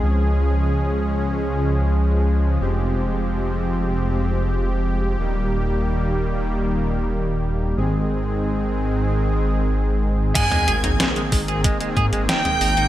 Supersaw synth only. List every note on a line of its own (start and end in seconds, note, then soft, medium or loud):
0.00 5.15 F3 medium
0.00 5.15 G#3 medium
0.00 2.59 C#4 medium
0.00 2.57 G#4 medium
2.61 5.17 C4 medium
2.61 7.73 G4 medium
5.20 7.75 D#3 medium
5.20 7.75 G3 medium
5.20 7.75 A#3 medium
7.77 10.33 D#3 medium
7.77 10.33 G#3 medium
7.77 10.33 C4 medium
7.77 10.33 G#4 medium
10.36 12.88 D#3 medium
10.36 12.88 A#3 medium
10.36 12.88 C4 medium
10.36 12.88 G#4 loud